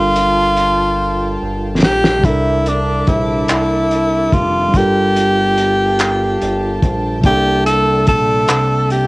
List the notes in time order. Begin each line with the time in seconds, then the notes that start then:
Already playing: G1 G3 D4 F4 A4 A#4 F5 G5 A5
0.16 closed hi-hat
0.57 closed hi-hat
1.42 G1
1.83 A#1 G4, snare
2.04 snare
2.19 C3 G3
2.23 C2 A#3 D4 E4 A4 E5 A5 D6, kick, closed hi-hat
2.29 A#4
2.66 D4, closed hi-hat
3.07 A#1 E4, kick, closed hi-hat
3.48 C2, clap, closed hi-hat
3.91 closed hi-hat
4.32 F1 F4, kick, closed hi-hat
4.69 G3 D4 F5 G5 A5
4.74 G1 F4 G4 A4, kick, closed hi-hat
4.79 A#4
5.16 closed hi-hat
5.57 closed hi-hat
5.99 clap, closed hi-hat
6.41 G1, closed hi-hat
6.82 A#1, kick, closed hi-hat
7.19 C3 G3
7.23 C2 A#3 D4 G4 D5 E5, kick, closed hi-hat
7.27 A4 E5
7.66 A4, closed hi-hat
8.07 A#1 A4, kick, closed hi-hat
8.48 C2, clap, closed hi-hat
8.90 G4, closed hi-hat